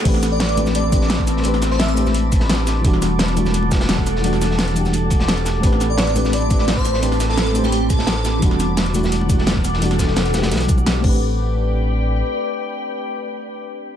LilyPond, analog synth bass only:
\new Staff \with { instrumentName = "Analog synth bass" } { \clef bass \time 4/4 \key a \minor \tempo 4 = 172 a,,1 | a,,1 | e,,1 | e,,1 |
a,,1 | a,,1 | e,,1 | e,,2 b,,4. a,,8~ |
a,,2. r4 | r1 | }